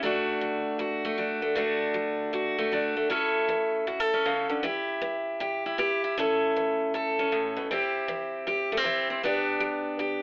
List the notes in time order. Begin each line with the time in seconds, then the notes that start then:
0.03 D3 A3 D4 F#4
0.41 F#3
0.79 A2 F#4
1.05 A3
1.18 F#3 D4
1.42 A3
1.56 D3 A3 D4 F#4
1.94 F#3
2.33 A2 F#4
2.58 A3
2.72 F#3 D4
2.97 A3
3.10 A2 C#4 E4 A4
3.49 E3
3.87 A2 F#4
4.00 A4
4.14 C#4
4.26 C#3
4.49 D3
4.63 E3 E4 G4
5.02 B3
5.40 B2 G4
5.66 E4
5.78 B3 G4
6.04 E4
6.18 A2 C#4 E4 A4
6.56 E3
6.94 A2 A4
7.19 C#4
7.32 A2
7.57 B2
7.71 C3 C4 E4 G4
8.08 E3
8.47 G2 G4
8.72 A3
8.77 C4
8.84 E3 E4
9.10 C4
9.23 G2 B3 D4 G4
9.60 G3
9.99 D3 G4